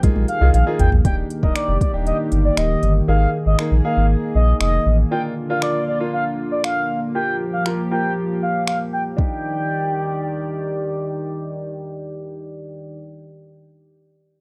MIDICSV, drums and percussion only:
0, 0, Header, 1, 2, 480
1, 0, Start_track
1, 0, Key_signature, -3, "major"
1, 0, Tempo, 508475
1, 988, Time_signature, 4, 2, 24, 8
1, 13600, End_track
2, 0, Start_track
2, 0, Title_t, "Drums"
2, 30, Note_on_c, 9, 42, 99
2, 30, Note_on_c, 9, 48, 63
2, 31, Note_on_c, 9, 36, 97
2, 124, Note_off_c, 9, 42, 0
2, 124, Note_off_c, 9, 48, 0
2, 125, Note_off_c, 9, 36, 0
2, 150, Note_on_c, 9, 48, 61
2, 244, Note_off_c, 9, 48, 0
2, 267, Note_on_c, 9, 42, 85
2, 362, Note_off_c, 9, 42, 0
2, 510, Note_on_c, 9, 42, 101
2, 604, Note_off_c, 9, 42, 0
2, 750, Note_on_c, 9, 42, 80
2, 750, Note_on_c, 9, 43, 118
2, 844, Note_off_c, 9, 42, 0
2, 844, Note_off_c, 9, 43, 0
2, 871, Note_on_c, 9, 43, 102
2, 965, Note_off_c, 9, 43, 0
2, 990, Note_on_c, 9, 36, 112
2, 990, Note_on_c, 9, 42, 91
2, 1084, Note_off_c, 9, 36, 0
2, 1085, Note_off_c, 9, 42, 0
2, 1231, Note_on_c, 9, 42, 86
2, 1326, Note_off_c, 9, 42, 0
2, 1350, Note_on_c, 9, 36, 88
2, 1444, Note_off_c, 9, 36, 0
2, 1469, Note_on_c, 9, 26, 114
2, 1471, Note_on_c, 9, 42, 90
2, 1563, Note_off_c, 9, 26, 0
2, 1565, Note_off_c, 9, 42, 0
2, 1708, Note_on_c, 9, 36, 88
2, 1712, Note_on_c, 9, 42, 72
2, 1803, Note_off_c, 9, 36, 0
2, 1806, Note_off_c, 9, 42, 0
2, 1951, Note_on_c, 9, 42, 90
2, 2045, Note_off_c, 9, 42, 0
2, 2188, Note_on_c, 9, 42, 80
2, 2282, Note_off_c, 9, 42, 0
2, 2429, Note_on_c, 9, 26, 104
2, 2429, Note_on_c, 9, 42, 90
2, 2524, Note_off_c, 9, 26, 0
2, 2524, Note_off_c, 9, 42, 0
2, 2669, Note_on_c, 9, 42, 75
2, 2764, Note_off_c, 9, 42, 0
2, 3387, Note_on_c, 9, 26, 110
2, 3481, Note_off_c, 9, 26, 0
2, 4348, Note_on_c, 9, 26, 109
2, 4442, Note_off_c, 9, 26, 0
2, 5305, Note_on_c, 9, 26, 112
2, 5400, Note_off_c, 9, 26, 0
2, 6270, Note_on_c, 9, 26, 106
2, 6364, Note_off_c, 9, 26, 0
2, 7229, Note_on_c, 9, 26, 109
2, 7323, Note_off_c, 9, 26, 0
2, 8189, Note_on_c, 9, 26, 104
2, 8283, Note_off_c, 9, 26, 0
2, 8670, Note_on_c, 9, 36, 96
2, 8764, Note_off_c, 9, 36, 0
2, 13600, End_track
0, 0, End_of_file